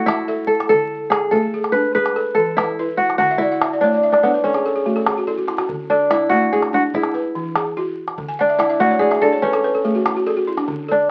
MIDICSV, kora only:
0, 0, Header, 1, 2, 480
1, 0, Start_track
1, 0, Tempo, 415800
1, 810, Time_signature, 12, 3, 24, 8
1, 12820, End_track
2, 0, Start_track
2, 0, Title_t, "Kora"
2, 0, Program_c, 0, 46
2, 0, Note_on_c, 0, 66, 82
2, 0, Note_on_c, 0, 69, 92
2, 71, Note_on_c, 0, 64, 85
2, 540, Note_off_c, 0, 69, 0
2, 544, Note_on_c, 0, 69, 85
2, 793, Note_off_c, 0, 69, 0
2, 798, Note_on_c, 0, 69, 87
2, 1271, Note_on_c, 0, 68, 82
2, 1340, Note_off_c, 0, 69, 0
2, 1514, Note_on_c, 0, 69, 87
2, 1516, Note_off_c, 0, 66, 0
2, 1583, Note_off_c, 0, 68, 0
2, 1880, Note_off_c, 0, 64, 0
2, 1987, Note_on_c, 0, 71, 85
2, 2244, Note_off_c, 0, 71, 0
2, 2248, Note_on_c, 0, 71, 92
2, 2703, Note_off_c, 0, 69, 0
2, 2708, Note_on_c, 0, 69, 85
2, 2963, Note_on_c, 0, 64, 80
2, 3433, Note_on_c, 0, 66, 78
2, 3667, Note_off_c, 0, 66, 0
2, 3668, Note_off_c, 0, 71, 0
2, 3672, Note_on_c, 0, 66, 86
2, 3898, Note_off_c, 0, 64, 0
2, 3903, Note_on_c, 0, 64, 85
2, 4229, Note_off_c, 0, 69, 0
2, 4397, Note_on_c, 0, 62, 82
2, 4755, Note_off_c, 0, 62, 0
2, 4760, Note_on_c, 0, 62, 67
2, 4885, Note_on_c, 0, 59, 73
2, 4954, Note_off_c, 0, 59, 0
2, 5123, Note_on_c, 0, 61, 70
2, 5192, Note_off_c, 0, 62, 0
2, 5359, Note_off_c, 0, 66, 0
2, 5712, Note_off_c, 0, 64, 0
2, 6809, Note_on_c, 0, 62, 84
2, 6878, Note_off_c, 0, 61, 0
2, 7046, Note_on_c, 0, 64, 79
2, 7266, Note_on_c, 0, 66, 88
2, 7534, Note_on_c, 0, 68, 92
2, 7603, Note_off_c, 0, 68, 0
2, 7777, Note_off_c, 0, 66, 0
2, 7782, Note_on_c, 0, 66, 89
2, 7851, Note_off_c, 0, 66, 0
2, 8014, Note_off_c, 0, 64, 0
2, 8018, Note_on_c, 0, 64, 84
2, 8748, Note_off_c, 0, 62, 0
2, 9704, Note_on_c, 0, 62, 77
2, 9827, Note_off_c, 0, 64, 0
2, 9911, Note_on_c, 0, 64, 73
2, 10159, Note_on_c, 0, 66, 92
2, 10381, Note_on_c, 0, 68, 95
2, 10637, Note_on_c, 0, 69, 94
2, 10707, Note_off_c, 0, 68, 0
2, 10877, Note_on_c, 0, 61, 79
2, 10947, Note_off_c, 0, 62, 0
2, 11720, Note_off_c, 0, 64, 0
2, 11847, Note_off_c, 0, 66, 0
2, 12159, Note_off_c, 0, 69, 0
2, 12600, Note_on_c, 0, 62, 77
2, 12669, Note_off_c, 0, 61, 0
2, 12820, Note_off_c, 0, 62, 0
2, 12820, End_track
0, 0, End_of_file